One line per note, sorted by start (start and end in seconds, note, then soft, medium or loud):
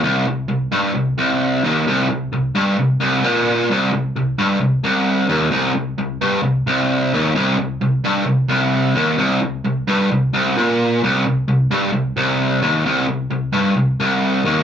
0.03 0.26 C2 loud
0.27 0.45 C2 medium
0.49 0.67 C2 medium
0.72 0.94 G2 loud
0.95 1.13 C2 medium
1.18 1.63 C2 medium
1.64 1.86 D#2 loud
1.88 2.08 C2 loud
2.10 2.28 C2 medium
2.33 2.51 C2 medium
2.55 2.77 G2 loud
2.78 2.96 C2 medium
3.00 3.24 C2 loud
3.24 3.69 A#2 medium
3.70 3.92 C2 loud
3.93 4.11 C2 medium
4.16 4.34 C2 medium
4.38 4.60 G2 loud
4.60 4.79 C2 medium
4.84 5.28 C2 loud
5.29 5.51 D#2 loud
5.51 5.74 C2 loud
5.75 5.93 C2 medium
5.98 6.17 C2 medium
6.21 6.43 G2 loud
6.43 6.62 C2 medium
6.67 7.12 C2 loud
7.14 7.35 D#2 loud
7.35 7.57 C2 loud
7.59 7.77 C2 medium
7.82 8.00 C2 medium
8.05 8.26 G2 loud
8.27 8.46 C2 medium
8.49 8.95 C2 medium
8.96 9.18 D#2 loud
9.18 9.41 C2 loud
9.42 9.60 C2 medium
9.65 9.83 C2 medium
9.88 10.10 G2 loud
10.12 10.30 C2 medium
10.33 10.56 C2 medium
10.57 11.02 A#2 medium
11.04 11.25 C2 loud
11.26 11.44 C2 medium
11.48 11.66 C2 medium
11.71 11.92 G2 loud
11.93 12.12 C2 medium
12.17 12.62 C2 loud
12.62 12.84 D#2 loud
12.86 13.07 C2 loud
13.08 13.26 C2 medium
13.31 13.49 C2 medium
13.53 13.76 G2 loud
13.77 13.95 C2 medium
14.00 14.44 C2 medium
14.45 14.63 D#2 loud